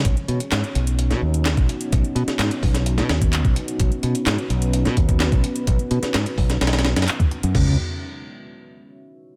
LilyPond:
<<
  \new Staff \with { instrumentName = "Ambient pad" } { \time 4/4 \key b \mixolydian \tempo 4 = 128 << { cis''1~ | cis''1 | b'1~ | b'1 |
r1 | } \\ { <b cis' dis' fis'>1~ | <b cis' dis' fis'>1~ | <b cis' dis' fis'>1~ | <b cis' dis' fis'>1 |
r1 | } >> }
  \new Staff \with { instrumentName = "Tonewheel organ" } { \clef bass \time 4/4 \key b \mixolydian r1 | r1 | r1 | r1 |
cis8 r2. r8 | }
  \new Staff \with { instrumentName = "Fingered electric bass" } { \clef bass \time 4/4 \key b \mixolydian b,,16 r16 b,16 r16 gis,16 r16 b,,8. b,16 dis,8. b,,16 r8 | b,,16 r16 b,16 r16 gis,16 r16 b,,8. b,16 dis,8. b,,16 r8 | b,,16 r16 b,16 r16 gis,16 r16 b,,8. b,16 dis,8. b,,16 r8 | b,,16 r16 b,16 r16 gis,16 r16 b,,8 b,,8. fis,16 r8. fis,16 |
cis,8 r2. r8 | }
  \new DrumStaff \with { instrumentName = "Drums" } \drummode { \time 4/4 <hh bd>16 hh16 hh16 hh16 <hc hh sn>16 hh16 hh16 hh16 hh16 <hh sn>8 hh16 <hc hh sn>16 <hh bd>16 hh16 hh16 | <hh bd>16 hh16 hh16 <hh sn>16 <hc hh sn>16 hh16 <hho bd>16 <hh sn>16 hh16 <hh sn>16 <hh sn>16 <hh bd>16 <hc hh>16 <hh bd>16 hh16 hh16 | <hh bd>16 hh16 hh16 hh16 <hc hh sn>16 hh16 hh16 hh16 hh16 <hh sn>16 <hh bd>16 <hh bd>16 <hc hh sn>16 <hh bd>16 hh16 hh16 | <hh bd>16 hh16 hh16 <hh sn>16 <hc hh sn>16 hh16 <hho bd>16 <hh sn>16 <hh sn>32 <hh sn>32 <hh sn>32 <hh sn>32 <hh sn>16 <hh sn>32 <hh sn>32 <hc hh>16 <hh bd>16 hh16 hh16 |
<cymc bd tomfh>4 r4 r4 r4 | }
>>